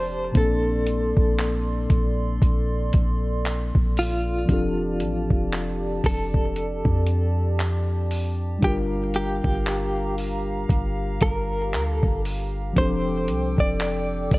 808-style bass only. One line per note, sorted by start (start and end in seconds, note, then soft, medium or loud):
0.00 0.31 F1 loud
0.35 1.13 A#1 loud
1.17 1.87 A#1 loud
1.90 2.40 A#1 loud
2.42 2.92 A#1 loud
2.94 3.72 A#1 loud
3.75 4.46 A#1 loud
4.49 5.02 F1 loud
5.01 5.29 A1 loud
5.31 6.01 F1 loud
6.04 6.83 F1 loud
6.85 8.58 F2 loud
8.63 9.41 G1 loud
9.45 10.66 G1 loud
10.70 11.19 G1 loud
11.22 11.75 G1 loud
11.74 12.02 D2 loud
12.03 12.74 G1 loud
12.77 13.30 F1 loud
13.28 13.57 C2 loud
13.58 14.29 F1 loud
14.32 14.39 F1 loud